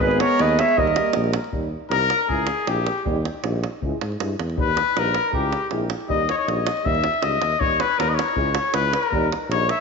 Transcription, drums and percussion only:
0.11 davul high
0.20 davul high
0.39 davul high
0.49 davul high
0.59 davul high
0.69 davul high
0.78 davul low
0.87 davul high
0.96 davul high
1.06 davul high
1.13 davul high
1.24 davul high
1.34 davul high
1.44 davul high
1.53 davul low
1.92 davul high
2.10 davul high
2.21 davul high
2.29 davul low
2.47 davul high
2.67 davul high
2.87 davul high
2.98 davul high
3.06 davul low
3.25 davul high
3.44 davul high
3.64 davul high
3.82 davul low
4.01 davul high
4.12 davul high
4.20 davul high
4.39 davul high
4.50 davul high
4.58 davul low
4.77 davul high
4.97 davul high
5.14 davul high
5.24 davul high
5.33 davul low
5.53 davul high
5.71 davul high
5.90 davul high
6.01 davul high
6.10 davul low
6.29 davul high
6.48 davul high
6.67 davul high
6.77 davul high
6.86 davul low
6.95 davul high
7.04 davul high
7.14 davul high
7.23 davul high
7.32 davul high
7.42 davul high
7.52 davul high
7.61 davul low
7.80 davul high
8.00 davul high
8.19 davul high
8.28 davul high
8.36 davul low
8.55 davul high
8.74 davul high
8.93 davul high
9.03 davul high
9.13 davul low
9.32 davul high
9.52 davul high
9.69 davul high

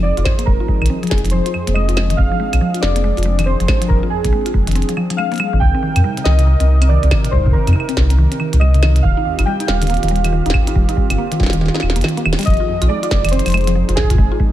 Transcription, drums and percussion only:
0.17 closed hi-hat
0.26 kick, snare, claves
0.39 closed hi-hat
0.47 kick
0.68 kick
0.82 claves
0.86 closed hi-hat
1.03 closed hi-hat
1.07 closed hi-hat
1.11 kick, snare, closed hi-hat
1.18 closed hi-hat
1.25 closed hi-hat
1.30 closed hi-hat
1.46 closed hi-hat
1.54 claves
1.67 closed hi-hat
1.75 claves
1.89 closed hi-hat
1.97 snare, claves
2.10 closed hi-hat
2.18 kick
2.53 closed hi-hat, claves
2.74 closed hi-hat
2.83 snare
2.96 closed hi-hat
3.17 closed hi-hat
3.23 closed hi-hat
3.39 closed hi-hat, claves
3.44 claves
3.60 closed hi-hat
3.68 kick, snare, claves
3.82 closed hi-hat
3.90 kick
4.25 kick, closed hi-hat
4.46 closed hi-hat
4.54 kick
4.67 closed hi-hat
4.71 closed hi-hat
4.75 closed hi-hat
4.82 closed hi-hat
4.89 closed hi-hat
4.97 claves
5.10 closed hi-hat
5.18 claves
5.32 closed hi-hat
5.34 closed hi-hat
5.36 closed hi-hat
5.38 closed hi-hat, claves
5.61 kick
5.96 closed hi-hat, claves
6.17 closed hi-hat
6.25 snare
6.39 closed hi-hat
6.60 closed hi-hat
6.82 closed hi-hat, claves
7.03 closed hi-hat
7.11 kick, snare, claves
7.25 closed hi-hat
7.33 kick
7.37 kick
7.40 kick
7.46 kick
7.51 kick
7.54 kick
7.67 closed hi-hat, claves
7.73 claves
7.80 claves
7.89 closed hi-hat
7.97 kick, snare
8.10 closed hi-hat
8.32 closed hi-hat
8.40 claves
8.53 closed hi-hat
8.61 claves
8.74 closed hi-hat
8.83 snare, claves
8.96 closed hi-hat
9.04 kick
9.39 closed hi-hat, claves
9.60 closed hi-hat
9.68 snare
9.82 closed hi-hat
9.87 closed hi-hat
9.90 closed hi-hat
9.94 closed hi-hat
9.97 closed hi-hat
10.03 closed hi-hat
10.08 closed hi-hat
10.16 closed hi-hat
10.24 closed hi-hat, claves
10.46 closed hi-hat
10.50 snare
10.54 kick, claves
10.67 closed hi-hat
10.76 kick
10.89 closed hi-hat
10.97 kick
11.10 closed hi-hat, claves
11.32 closed hi-hat
11.40 kick, snare
11.43 snare
11.46 snare
11.50 snare, closed hi-hat
11.61 snare
11.66 snare
11.68 snare
11.75 snare
11.80 snare, claves
11.90 snare
11.96 closed hi-hat
12.01 snare, closed hi-hat, claves
12.09 closed hi-hat
12.17 closed hi-hat
12.26 claves
12.33 snare
12.39 closed hi-hat
12.41 closed hi-hat
12.43 closed hi-hat
12.45 kick, closed hi-hat
12.54 closed hi-hat
12.57 closed hi-hat
12.82 closed hi-hat, claves
13.03 closed hi-hat
13.11 kick, snare, shaker
13.25 closed hi-hat, claves
13.29 closed hi-hat
13.33 closed hi-hat
13.39 closed hi-hat
13.46 closed hi-hat, claves
13.48 closed hi-hat
13.50 closed hi-hat
13.52 closed hi-hat
13.54 closed hi-hat, claves
13.57 closed hi-hat
13.61 closed hi-hat
13.64 closed hi-hat
13.67 closed hi-hat
13.89 closed hi-hat
13.97 kick, snare
14.04 kick
14.10 kick, closed hi-hat
14.14 kick
14.18 kick
14.40 kick

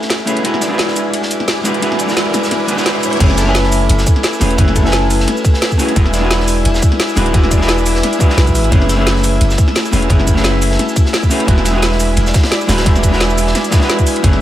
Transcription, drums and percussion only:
0.02 snare
0.10 snare, closed hi-hat, ride
0.27 closed hi-hat, ride, shaker
0.36 closed hi-hat, ride
0.45 closed hi-hat, ride
0.54 snare
0.61 snare, closed hi-hat, ride, shaker
0.78 snare, closed hi-hat, ride
0.88 snare
0.96 closed hi-hat, ride, shaker
1.14 closed hi-hat, ride
1.23 snare
1.31 closed hi-hat, ride, shaker
1.40 snare
1.48 snare, closed hi-hat, ride
1.65 snare, closed hi-hat, ride, shaker
1.74 closed hi-hat
1.82 closed hi-hat, ride
1.92 snare
1.99 closed hi-hat, ride, shaker
2.09 snare, shaker
2.17 snare, closed hi-hat, ride
2.34 snare, closed hi-hat, ride, shaker
2.43 snare, shaker
2.51 snare, closed hi-hat, ride
2.68 closed hi-hat, ride, shaker
2.78 snare, shaker
2.86 snare, closed hi-hat, ride
3.03 closed hi-hat, ride, shaker
3.12 closed hi-hat, ride
3.20 kick, closed hi-hat, crash, ride
3.30 snare
3.38 snare, closed hi-hat, ride, shaker
3.55 snare, closed hi-hat, ride
3.64 snare
3.72 open hi-hat, ride, shaker
3.89 closed hi-hat, ride
3.99 snare, shaker
4.07 kick, closed hi-hat, ride, shaker
4.16 snare
4.23 snare, closed hi-hat, ride
4.33 shaker
4.41 snare, open hi-hat, ride, shaker
4.51 closed hi-hat
4.58 kick, closed hi-hat, ride
4.68 snare
4.76 kick, closed hi-hat, ride, shaker
4.85 snare
4.92 snare, closed hi-hat, ride
5.10 open hi-hat, ride, shaker
5.20 snare
5.28 snare, closed hi-hat, ride
5.37 shaker
5.45 kick, closed hi-hat, ride, shaker
5.54 snare
5.62 snare, closed hi-hat, ride
5.71 kick, shaker
5.79 open hi-hat, ride, shaker
5.88 closed hi-hat, ride
5.96 kick, closed hi-hat, ride
6.06 snare
6.13 snare, closed hi-hat, ride, shaker
6.30 snare, closed hi-hat, ride
6.40 snare
6.48 open hi-hat, ride, shaker
6.65 closed hi-hat, ride
6.75 snare, shaker
6.82 kick, closed hi-hat, ride, shaker
6.92 snare
7.00 snare, closed hi-hat, ride
7.09 shaker
7.17 snare, open hi-hat, ride, shaker
7.26 closed hi-hat
7.34 kick, closed hi-hat, ride
7.44 snare
7.51 kick, closed hi-hat, ride, shaker
7.61 snare
7.68 snare, closed hi-hat, ride
7.78 shaker
7.86 open hi-hat, ride, shaker
7.96 snare
8.03 snare, closed hi-hat, ride
8.13 closed hi-hat, shaker
8.20 kick, closed hi-hat, ride, shaker
8.30 snare
8.38 snare, closed hi-hat, ride
8.47 kick, closed hi-hat, shaker
8.55 open hi-hat, ride, shaker
8.64 closed hi-hat, ride
8.72 kick, closed hi-hat, ride
8.82 snare
8.89 snare, closed hi-hat, ride, shaker
9.07 snare, closed hi-hat, ride
9.16 snare
9.24 open hi-hat, ride, shaker
9.41 closed hi-hat, ride
9.50 snare, shaker
9.58 kick, closed hi-hat, ride, shaker
9.68 snare
9.75 snare, closed hi-hat, ride
9.85 shaker
9.93 snare, open hi-hat, ride, shaker
10.02 closed hi-hat
10.10 kick, closed hi-hat, ride
10.20 snare
10.27 kick, closed hi-hat, ride, shaker
10.37 snare
10.44 snare, closed hi-hat, ride
10.62 open hi-hat, ride, shaker
10.72 snare
10.79 snare, closed hi-hat, ride
10.89 shaker
10.96 kick, closed hi-hat, ride, shaker
11.06 snare
11.13 snare, closed hi-hat, ride
11.23 kick, shaker
11.31 open hi-hat, ride, shaker
11.40 closed hi-hat, ride
11.48 kick, closed hi-hat, ride
11.58 snare
11.65 snare, closed hi-hat, ride, shaker
11.82 snare, closed hi-hat, ride
11.92 snare
12.00 open hi-hat, ride, shaker
12.17 closed hi-hat, ride
12.27 snare, shaker
12.34 kick, snare, closed hi-hat, ride, shaker
12.43 snare, ride
12.51 snare, closed hi-hat, ride
12.61 shaker
12.68 snare, open hi-hat, ride, shaker
12.78 snare, closed hi-hat, ride
12.86 kick, closed hi-hat, ride
12.96 snare, shaker
13.03 kick, closed hi-hat, ride, shaker
13.13 snare
13.20 snare, closed hi-hat, ride
13.30 shaker
13.38 open hi-hat, ride, shaker
13.47 snare
13.55 snare, closed hi-hat, ride
13.64 closed hi-hat, shaker
13.72 kick, snare, closed hi-hat, ride, shaker
13.81 snare
13.90 snare, closed hi-hat, ride
13.99 kick, closed hi-hat, shaker
14.06 open hi-hat, ride, shaker
14.16 closed hi-hat, ride
14.24 kick, closed hi-hat, ride
14.33 snare

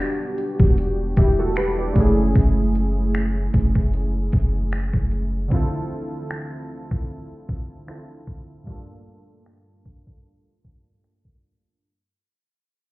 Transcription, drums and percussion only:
0.38 closed hi-hat
0.60 kick
0.78 closed hi-hat
1.17 kick, closed hi-hat
1.56 finger snap, closed hi-hat
1.96 kick, closed hi-hat
2.35 kick, closed hi-hat
2.75 closed hi-hat
3.15 finger snap, closed hi-hat
3.54 kick, closed hi-hat
3.75 kick
3.94 closed hi-hat
4.32 kick, closed hi-hat
4.72 finger snap, closed hi-hat
4.94 kick
5.11 closed hi-hat
5.51 kick
6.31 finger snap
6.91 kick
7.49 kick
7.88 finger snap
8.27 kick
8.67 kick
9.46 finger snap
9.86 kick
10.07 kick
10.65 kick
11.04 finger snap
11.25 kick

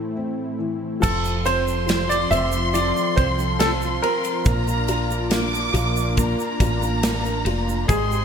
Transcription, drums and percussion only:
1.03 kick, crash, shaker
1.25 shaker
1.46 ride, shaker
1.68 shaker
1.89 snare, ride, shaker
2.10 ride, shaker
2.31 ride, shaker
2.52 shaker
2.74 ride, shaker
2.97 shaker
3.17 kick, ride, shaker
3.39 shaker
3.60 snare, ride, shaker
3.82 shaker
4.03 ride
4.24 ride, shaker
4.45 kick, ride, shaker
4.68 shaker
4.88 ride, shaker
5.11 shaker
5.31 snare, ride, shaker
5.54 shaker
5.74 ride, shaker
5.97 shaker
6.17 kick, ride, shaker
6.40 shaker
6.60 kick, ride, shaker
6.82 shaker
7.03 snare, ride, shaker
7.25 shaker
7.46 ride
7.69 shaker
7.89 kick, ride, shaker
8.12 shaker

